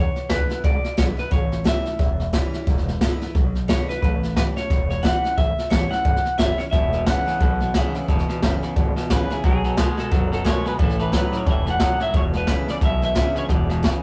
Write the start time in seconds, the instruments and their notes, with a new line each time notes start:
Already playing: steel-string acoustic guitar E2, clean electric guitar C#5
0.16 muted upright bass stroke, snare
0.29 upright bass D2, steel-string acoustic guitar D3 G#3 B3 E4, clean electric guitar B4, kick, snare, hi-hat pedal
0.50 steel-string acoustic guitar B3 E4, muted upright bass stroke, snare
0.64 upright bass C#2, steel-string acoustic guitar B2, clean electric guitar D5, kick, snare
0.83 muted upright bass stroke, snare
0.97 upright bass B1, steel-string acoustic guitar D3 G#3 B3 E4, clean electric guitar C#5, kick, snare, hi-hat pedal
1.17 steel-string acoustic guitar B3 E4, clean electric guitar B4, muted upright bass stroke, snare
1.31 upright bass A1, steel-string acoustic guitar A2, clean electric guitar C#5, kick, snare
1.52 snare
1.64 steel-string acoustic guitar E3 G3 C#4 E4, clean electric guitar E5, kick, snare, hi-hat pedal
1.84 steel-string acoustic guitar C#4 E4, muted upright bass stroke, snare
1.99 upright bass E1, steel-string acoustic guitar E2, kick, snare
2.20 snare
2.33 steel-string acoustic guitar E3 G3 C#4 E4, kick, snare, hi-hat pedal
2.53 muted upright bass stroke, snare
2.67 upright bass E1, steel-string acoustic guitar E2, kick, snare
2.77 snare
2.88 snare
3.01 steel-string acoustic guitar D3 G#3 B3 E4, kick, snare, hi-hat pedal
3.20 steel-string acoustic guitar B3 E4, muted upright bass stroke, snare
3.35 upright bass B1, steel-string acoustic guitar B2, kick, snare
3.55 snare
3.68 steel-string acoustic guitar D3 G#3 B3 E4, clean electric guitar C#5, kick, snare, hi-hat pedal
3.89 steel-string acoustic guitar B3 E4, clean electric guitar B4, muted upright bass stroke, snare
4.02 upright bass A1, steel-string acoustic guitar A2, clean electric guitar B4, kick, snare
4.23 snare
4.36 steel-string acoustic guitar E3 G3 C#4 E4, clean electric guitar B4, kick, snare, hi-hat pedal
4.56 steel-string acoustic guitar C#4 E4, clean electric guitar C#5, muted upright bass stroke, snare
4.70 upright bass E1, steel-string acoustic guitar E2, kick, snare
4.90 clean electric guitar C#5, snare
5.03 steel-string acoustic guitar E3 G3 C#4 E4, clean electric guitar F#5, kick, snare, hi-hat pedal
5.24 steel-string acoustic guitar C#4 E4, muted upright bass stroke, snare
5.37 upright bass A1, steel-string acoustic guitar A2, clean electric guitar E5, kick, snare
5.58 snare
5.70 upright bass A1, steel-string acoustic guitar E3 G3 C#4 E4, clean electric guitar C#5, kick, snare, hi-hat pedal
5.91 steel-string acoustic guitar C#4 E4, clean electric guitar F#5, muted upright bass stroke, snare
6.05 upright bass G1, steel-string acoustic guitar E2, kick, snare
6.16 snare
6.24 muted upright bass stroke, snare
6.38 upright bass F#1, steel-string acoustic guitar E3 G3 C#4 E4, clean electric guitar E5, kick, snare, hi-hat pedal
6.58 steel-string acoustic guitar C#4 E4, clean electric guitar C#5, muted upright bass stroke, snare
6.71 upright bass E1, clean electric guitar E2 B2 E5, steel-string acoustic guitar E2, kick, snare
6.93 clean electric guitar E2 B2, snare
7.06 clean electric guitar E2 C#3 F#5, steel-string acoustic guitar D3 G#3 B3 E4, kick, snare, hi-hat pedal
7.26 clean electric guitar E2 C#3, steel-string acoustic guitar B3 E4, muted upright bass stroke, snare
7.40 upright bass B1, clean electric guitar E2 B2, steel-string acoustic guitar B2, kick, snare
7.60 clean electric guitar E2 B2, snare
7.74 clean electric guitar E2 C#3, steel-string acoustic guitar D3 G#3 B3 E4, kick, snare, hi-hat pedal
7.94 clean electric guitar E2 C#3, steel-string acoustic guitar B3 E4, muted upright bass stroke, snare
8.08 upright bass E1, clean electric guitar E2 B2, steel-string acoustic guitar E2, kick, snare
8.19 snare
8.29 clean electric guitar E2 B2, muted upright bass stroke, snare
8.42 upright bass F#1, clean electric guitar E2 C#3, steel-string acoustic guitar D3 G#3 B3 E4, kick, snare, hi-hat pedal
8.62 clean electric guitar E2 C#3, steel-string acoustic guitar B3 E4, muted upright bass stroke, snare
8.76 upright bass G#1, clean electric guitar E2 B2, steel-string acoustic guitar B2, kick, snare
8.96 clean electric guitar E2 B2, muted upright bass stroke, snare
9.10 upright bass A1, clean electric guitar E2 C#3 B4, steel-string acoustic guitar D3 G#3 B3 E4, kick, snare, hi-hat pedal
9.30 clean electric guitar E2 C#3 G#4, steel-string acoustic guitar B3 E4, muted upright bass stroke, snare
9.44 upright bass B1, steel-string acoustic guitar B2, clean electric guitar B2 F#3 G#4, kick, snare
9.64 clean electric guitar B2 F#3, snare
9.77 clean electric guitar B2 G#3, steel-string acoustic guitar D#3 A3 B3 F#4, kick, snare, hi-hat pedal
9.97 clean electric guitar B2 G#3 A4, steel-string acoustic guitar B3 F#4, muted upright bass stroke, snare
10.11 upright bass F#1, steel-string acoustic guitar F#2, clean electric guitar B2 F#3, kick, snare
10.32 clean electric guitar B2 F#3 A4, snare
10.45 clean electric guitar B2 G#3 C#5, steel-string acoustic guitar D#3 A3 B3 F#4, kick, snare, hi-hat pedal
10.65 clean electric guitar B2 G#3 B4, steel-string acoustic guitar B3 F#4, muted upright bass stroke, snare
10.79 upright bass A1, clean electric guitar A2 E3 A4, steel-string acoustic guitar A2, kick, snare
10.89 snare
10.99 clean electric guitar A2 E3 B4, snare
11.12 clean electric guitar A2 F#3, steel-string acoustic guitar E3 G3 C#4 E4, kick, snare, hi-hat pedal
11.16 clean electric guitar B4
11.32 clean electric guitar A2 F#3, steel-string acoustic guitar C#4 E4, muted upright bass stroke, snare
11.37 clean electric guitar C#5
11.46 upright bass E1, steel-string acoustic guitar G2, clean electric guitar A2 E3, kick, snare
11.50 clean electric guitar E5
11.66 clean electric guitar A2 E3, snare
11.70 clean electric guitar F#5
11.80 steel-string acoustic guitar F#2, clean electric guitar A2 F#3, kick, snare, hi-hat pedal
12.00 clean electric guitar A2 F#3 E5, muted upright bass stroke, snare
12.13 upright bass E1, steel-string acoustic guitar E2, clean electric guitar E2 B2 C#5, kick, snare
12.33 clean electric guitar E2 B2, snare
12.37 clean electric guitar B4
12.47 clean electric guitar E2 C#3, steel-string acoustic guitar D3 G#3 B3 E4, kick, snare, hi-hat pedal
12.68 clean electric guitar E2 C#3 D5, steel-string acoustic guitar B3 E4, muted upright bass stroke, snare
12.81 upright bass B1, clean electric guitar E2 B2 E5, steel-string acoustic guitar B2, kick, snare
13.02 clean electric guitar E2 B2 E5, snare
13.15 clean electric guitar E2 C#3, steel-string acoustic guitar D3 G#3 B3 E4, kick, snare, hi-hat pedal
13.35 clean electric guitar E2 C#3 C#5, muted upright bass stroke, snare
13.49 upright bass E1, clean electric guitar E2 B2 D5, steel-string acoustic guitar G#2, kick, snare
13.69 clean electric guitar E2 B2 B4, snare
13.83 clean electric guitar E2 C#3 C#5, steel-string acoustic guitar A2, kick, snare, hi-hat pedal